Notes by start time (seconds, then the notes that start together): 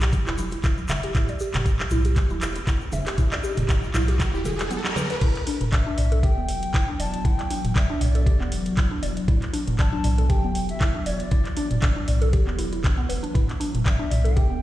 Already playing: B1
0.00 G4, clap, closed hi-hat, shaker
0.12 kick, closed hi-hat, muted conga, high conga, shaker
0.27 E1 E4, clap, shaker
0.38 E4, closed hi-hat, muted conga, high conga, shaker
0.51 E4, closed hi-hat, shaker
0.63 E1 E4, kick, clap, closed hi-hat, muted conga, shaker
0.78 high conga, shaker
0.88 E1 E5, clap, closed hi-hat, muted conga, high conga, low conga, shaker
1.03 G4, closed hi-hat, shaker
1.14 E1 E4, kick, clap, closed hi-hat, mid tom, riser, shaker
1.28 D5, closed hi-hat, muted conga, shaker
1.39 G4, shaker
1.54 E1, clap, closed hi-hat, mid tom, muted conga, low conga, shaker
1.66 kick, closed hi-hat, shaker
1.79 clap, muted conga, shaker
1.90 B1 E4, closed hi-hat, mid tom, high conga, shaker
2.04 G4, closed hi-hat, shaker
2.16 kick, clap, closed hi-hat, muted conga, high conga, shaker
2.30 E1 E4, high conga, shaker
2.40 E4, clap, closed hi-hat, muted conga, shaker
2.55 E4, closed hi-hat, shaker
2.67 E1 E4, kick, clap, closed hi-hat, muted conga, shaker
2.81 shaker
2.92 E1 E5, closed hi-hat, muted conga, high conga, low conga, shaker
3.06 G4, clap, closed hi-hat, shaker
3.18 E1 E4, kick, closed hi-hat, mid tom, shaker
3.32 D5, clap, closed hi-hat, muted conga, shaker
3.43 G4, shaker
3.57 E1, closed hi-hat, mid tom, muted conga, low conga, shaker
3.69 kick, clap, closed hi-hat, shaker
3.82 muted conga, shaker
3.94 B1 E4, clap, closed hi-hat, mid tom, high conga, shaker
4.08 G4, closed hi-hat, shaker
4.19 kick, clap, closed hi-hat, muted conga, high conga, shaker
4.33 E1 E4, shaker
4.45 A4, closed hi-hat, muted conga, high conga, low conga, shaker
4.59 E4, clap, closed hi-hat, shaker
4.70 B3, closed hi-hat, muted conga, high conga, shaker
4.84 clap, high conga, shaker
4.96 B4, closed hi-hat, muted conga, high conga, low conga, shaker
5.10 B4, closed hi-hat, shaker
5.21 E1 E3 F#3 B3 E4, kick, closed hi-hat, mid tom, crash
5.35 clap, closed hi-hat
5.47 D4, open hi-hat
5.61 E1, closed hi-hat, mid tom
5.72 D5 E5, kick, clap, closed hi-hat
5.87 D4
5.98 B1 D5, mid tom, open hi-hat
6.12 A4, closed hi-hat
6.23 G4 G5, kick, closed hi-hat
6.37 E1 B3
6.49 open hi-hat
6.63 closed hi-hat
6.74 E1 E4, kick, clap, closed hi-hat
6.88 D4
6.99 E1 D5 A5, open hi-hat
7.14 closed hi-hat
7.25 E1 E4 G5, kick, closed hi-hat
7.39 clap, closed hi-hat
7.50 D4, open hi-hat
7.64 E1, closed hi-hat, mid tom
7.76 D5 E5, kick, clap, closed hi-hat
7.90 D4
8.01 B1 D5, mid tom, open hi-hat
8.15 A4, closed hi-hat
8.26 G4, kick, closed hi-hat
8.40 E1 B3, clap
8.52 open hi-hat
8.66 closed hi-hat
8.77 E1 E4, kick, clap, closed hi-hat
8.91 D4
9.03 E1 D5, open hi-hat
9.17 closed hi-hat
9.28 E1 E4, kick, closed hi-hat, mid tom
9.42 clap, closed hi-hat
9.53 D4, open hi-hat
9.67 E1, closed hi-hat, mid tom
9.79 D5 A5, kick, clap, closed hi-hat
9.93 D4
10.04 B1 D5, mid tom, open hi-hat
10.18 A4, closed hi-hat
10.29 G4 G5, kick, closed hi-hat
10.44 E1 B3
10.55 open hi-hat
10.69 E5, closed hi-hat
10.81 E1 E4, kick, clap, closed hi-hat
10.95 D4
11.06 E1 C#5 D5, open hi-hat
11.20 D5, closed hi-hat
11.31 E1 E4, kick, closed hi-hat
11.45 clap, closed hi-hat
11.57 D4, open hi-hat
11.71 E1, closed hi-hat, mid tom
11.82 D5, kick, clap, closed hi-hat
11.96 D4
12.08 B1 D5, mid tom, open hi-hat
12.22 A4, closed hi-hat
12.33 G4, kick, closed hi-hat
12.47 E1 B3, clap
12.59 E4, open hi-hat
12.73 E4, closed hi-hat
12.84 B1 D4, kick, clap, closed hi-hat
12.98 B3
13.09 E1 B4, open hi-hat
13.23 D4, closed hi-hat
13.34 E1 D4 E4, kick, closed hi-hat, mid tom
13.49 clap, closed hi-hat
13.60 D4, open hi-hat
13.74 E1, closed hi-hat, mid tom
13.85 D5 E5 G5, kick, clap, closed hi-hat
13.99 D4
14.11 B1 D5, mid tom, open hi-hat
14.24 A4, closed hi-hat
14.36 G4 G5, kick, closed hi-hat
14.50 E1 B3